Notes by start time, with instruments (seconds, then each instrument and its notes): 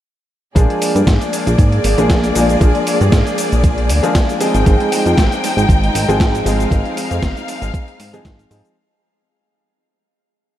0.55 analog synth bass A#1, grand piano F3 G#3 A#3 D4 G#4, string section A#3 G#4 D5, kick, closed hi-hat, cabasa
0.70 closed hi-hat
0.82 open hi-hat, cabasa
0.95 analog synth bass G2, closed hi-hat, cabasa
1.07 analog synth bass G#2, kick, snare, closed hi-hat, cabasa
1.21 closed hi-hat, cabasa
1.33 open hi-hat, cabasa
1.47 analog synth bass A#1, closed hi-hat, cabasa
1.58 analog synth bass G#2, kick, closed hi-hat, cabasa
1.72 closed hi-hat
1.84 analog synth bass G#1, open hi-hat, cabasa
1.98 analog synth bass A#1, grand piano F3 G#3 A#3 D4 G#4, closed hi-hat, cabasa
2.10 kick, snare, closed hi-hat, cabasa
2.24 closed hi-hat, cabasa
2.35 analog synth bass A#1, grand piano F3 G#3 A#3 D4 G#4, open hi-hat, cabasa
2.49 closed hi-hat, cabasa
2.60 analog synth bass A#1, grand piano F3 G#3 A#3 D4 G#4, kick, closed hi-hat, cabasa
2.75 closed hi-hat
2.87 open hi-hat, cabasa
3.01 analog synth bass G2, closed hi-hat, cabasa
3.12 analog synth bass G#2, kick, snare, closed hi-hat, cabasa
3.27 closed hi-hat, cabasa
3.38 open hi-hat, cabasa
3.52 analog synth bass A#1, closed hi-hat, cabasa
3.64 kick, closed hi-hat, cabasa
3.78 closed hi-hat
3.89 analog synth bass D2, open hi-hat, cabasa
4.03 grand piano F3 G#3 A#3 D4 G#4, closed hi-hat, cabasa
4.15 kick, snare, closed hi-hat, cabasa
4.29 closed hi-hat, cabasa
4.40 grand piano F3 G#3 C4 D#4 G#4, string section G#3 D#4 G5, open hi-hat, cabasa
4.54 analog synth bass G#1, closed hi-hat, cabasa
4.66 analog synth bass G#1, grand piano F3 G#3 C4 D#4 G#4, kick, closed hi-hat, cabasa
4.80 closed hi-hat
4.92 open hi-hat, cabasa
5.06 analog synth bass F2, closed hi-hat, cabasa
5.18 analog synth bass G#1, kick, snare, closed hi-hat, cabasa
5.32 closed hi-hat, cabasa
5.44 open hi-hat, cabasa
5.57 analog synth bass G#1, closed hi-hat, cabasa
5.69 analog synth bass G#1, kick, closed hi-hat, cabasa
5.84 closed hi-hat
5.95 analog synth bass G#1, open hi-hat, cabasa
6.08 analog synth bass G#1, grand piano F3 G#3 C4 D#4 G#4, closed hi-hat, cabasa
6.20 kick, snare, closed hi-hat, cabasa
6.35 closed hi-hat, cabasa
6.45 analog synth bass G#1, grand piano F3 G#3 C4 D#4 G#4, string section F5, open hi-hat, cabasa
6.60 closed hi-hat, cabasa
6.70 analog synth bass G#1, grand piano F3 G#3 C4 D#4 G#4, kick, closed hi-hat, cabasa
6.85 closed hi-hat
6.97 open hi-hat, cabasa
7.11 analog synth bass F2, closed hi-hat, cabasa
7.22 analog synth bass G#1, kick, snare, closed hi-hat, cabasa
7.37 closed hi-hat, cabasa
7.48 open hi-hat, cabasa
7.62 analog synth bass G#1, closed hi-hat, cabasa
7.74 kick, closed hi-hat, cabasa
7.88 closed hi-hat
8.00 analog synth bass G#2, open hi-hat, cabasa
8.13 grand piano F3 G#3 C4 D#4 G#4, closed hi-hat, cabasa
8.25 analog synth bass G#1, kick, snare, closed hi-hat, cabasa
8.39 closed hi-hat, cabasa
8.50 analog synth bass G#2, grand piano F3 G#3 C4 D#4 G#4, open hi-hat, cabasa
8.65 cabasa